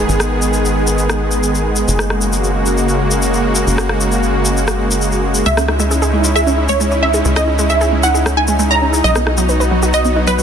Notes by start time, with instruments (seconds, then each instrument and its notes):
Already playing: supersaw synth D#3 G#3 B3 G#4
0.09 analog synth bass G#1, shaker
0.20 cross-stick, shaker
0.42 shaker
0.53 shaker
0.65 shaker
0.87 shaker
0.98 shaker
1.09 cross-stick, shaker
1.31 shaker
1.43 shaker
1.55 shaker
1.76 shaker
1.88 analog synth bass F#1, supersaw synth C#3 A#3 F#4, shaker
1.99 cross-stick, shaker
2.10 cross-stick
2.21 shaker
2.33 shaker
2.44 shaker
2.66 shaker
2.78 shaker
2.89 shaker
3.11 shaker
3.22 shaker
3.34 shaker
3.55 shaker
3.67 analog synth bass F#1, shaker
3.78 cross-stick, shaker
3.89 cross-stick
4.01 shaker
4.12 shaker
4.23 shaker
4.45 shaker
4.57 shaker
4.67 cross-stick, shaker
4.91 shaker
5.01 shaker
5.12 shaker
5.35 shaker
5.46 analog synth bass C#2, synth arpeggio sound G#3, supersaw synth C#4 D#4 E4, synth pluck E5, shaker
5.57 synth arpeggio sound C#4, cross-stick, shaker
5.68 synth arpeggio sound D#4, cross-stick
5.80 synth arpeggio sound G#3, shaker
5.91 synth arpeggio sound G#4, shaker
6.02 synth arpeggio sound G#4, shaker
6.13 synth arpeggio sound G#3
6.24 synth arpeggio sound E4, shaker
6.36 synth arpeggio sound G#4, synth pluck E5, shaker
6.47 synth arpeggio sound C#4, shaker
6.58 synth arpeggio sound D#4
6.69 synth arpeggio sound G#3, synth pluck C#5, shaker
6.80 synth arpeggio sound G#3, shaker
6.91 synth arpeggio sound C#5, shaker
7.03 synth arpeggio sound C#4, synth pluck E5
7.14 synth arpeggio sound G#4, shaker
7.25 analog synth bass C#2, synth arpeggio sound G#3, shaker
7.36 synth arpeggio sound C#4, synth pluck D#5, cross-stick, shaker
7.48 synth arpeggio sound D#4
7.59 synth arpeggio sound G#3, shaker
7.70 synth arpeggio sound G#4, synth pluck E5, shaker
7.81 synth arpeggio sound G#4, shaker
7.92 synth arpeggio sound G#3
8.03 synth arpeggio sound E4, synth pluck F#5, shaker
8.15 synth arpeggio sound G#4, shaker
8.26 synth arpeggio sound C#4, cross-stick, shaker
8.37 synth arpeggio sound D#4, synth pluck G#5
8.48 synth arpeggio sound G#3, shaker
8.59 synth arpeggio sound G#3, shaker
8.71 synth arpeggio sound C#5, synth pluck A#5, shaker
8.82 synth arpeggio sound C#4
8.93 synth arpeggio sound G#4, shaker
9.04 analog synth bass B1, synth arpeggio sound F#3, supersaw synth F#3 B3 F#4, synth pluck D#5, shaker
9.15 synth arpeggio sound B3, cross-stick, shaker
9.27 synth arpeggio sound D#4, cross-stick
9.38 synth arpeggio sound F#3, shaker
9.49 synth arpeggio sound B4, shaker
9.60 synth arpeggio sound B4, shaker
9.71 synth arpeggio sound F#3
9.83 synth arpeggio sound F#4, shaker
9.94 synth arpeggio sound B4, synth pluck D#5, shaker
10.05 synth arpeggio sound B3, shaker
10.16 synth arpeggio sound D#4
10.27 synth arpeggio sound F#3, synth pluck B4, shaker
10.39 synth arpeggio sound F#3, shaker